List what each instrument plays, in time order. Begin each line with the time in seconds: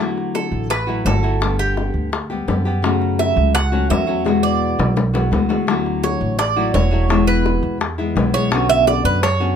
0.00 nylon-string guitar D3 F#3 A3 E4 F#4
0.18 high bongo
0.35 cuban tres A4, high bongo
0.52 upright bass A1
0.70 cuban tres B4, muted nylon-string guitar stroke, high bongo
0.87 nylon-string guitar F#3 A3 E4 F#4, high bongo
1.05 upright bass G1, nylon-string guitar F#3 A3 E4 F#4, cuban tres A4, high bongo, low bongo
1.23 nylon-string guitar F#3 A3 E4 F#4, high bongo
1.41 nylon-string guitar D3 G3 B3 G4, high bongo
1.59 cuban tres G4, high bongo
1.77 high bongo
1.94 upright bass D2
2.12 muted nylon-string guitar stroke, high bongo
2.30 nylon-string guitar G3 B3 G4, high bongo
2.48 upright bass F#2, nylon-string guitar D3 G3 B3 G4, high bongo, low bongo
2.65 nylon-string guitar G3 B3 G4, high bongo
2.82 nylon-string guitar C#3 F#3 A3 C#4 F#4, high bongo
3.02 high bongo
3.19 cuban tres E5, high bongo
3.36 upright bass C#2
3.54 cuban tres F#5, muted nylon-string guitar stroke, high bongo
3.72 nylon-string guitar F#3 A3 C#4 F#4, high bongo
3.89 upright bass E2, nylon-string guitar F#3 A3 C#4 F#4, cuban tres E5, high bongo, low bongo
4.07 nylon-string guitar F#3 A3 C#4 F#4, high bongo
4.25 nylon-string guitar B2 E3 G#3 B3 F#4, high bongo
4.43 cuban tres D5
4.79 upright bass B1, low bongo
4.96 muted nylon-string guitar stroke, low bongo
5.14 nylon-string guitar E3 G#3 B3 F#4, low bongo
5.31 upright bass D2, nylon-string guitar E3 G#3 B3 F#4, low bongo
5.49 nylon-string guitar E3 G#3 B3 F#4, low bongo
5.67 nylon-string guitar D3 F#3 A3 E4 F#4, high bongo
5.86 high bongo
6.03 cuban tres C#5, high bongo
6.21 upright bass A1
6.39 cuban tres D5, muted nylon-string guitar stroke, high bongo
6.56 nylon-string guitar F#3 A3 E4 F#4, high bongo
6.74 upright bass E1, nylon-string guitar F#3 A3 E4 F#4, cuban tres C#5, high bongo, low bongo
6.91 nylon-string guitar F#3 A3 E4 F#4, high bongo
7.08 nylon-string guitar B2 E3 G#3 B3 E4, high bongo
7.27 cuban tres B4, high bongo
7.46 high bongo
7.63 upright bass E2
7.80 muted nylon-string guitar stroke, high bongo
7.98 nylon-string guitar E3 G#3 B3 E4, high bongo
8.16 upright bass B1, nylon-string guitar E3 G#3 B3 E4, high bongo, low bongo
8.33 nylon-string guitar E3 G#3 B3 E4, cuban tres C#5, high bongo
8.51 nylon-string guitar B2 D3 B3 C#4 F#4, high bongo
8.69 cuban tres E5, high bongo
8.87 cuban tres D5, high bongo
9.05 upright bass F#2, cuban tres B4
9.22 cuban tres C#5, muted nylon-string guitar stroke, high bongo
9.40 nylon-string guitar D3 B3 C#4 F#4, high bongo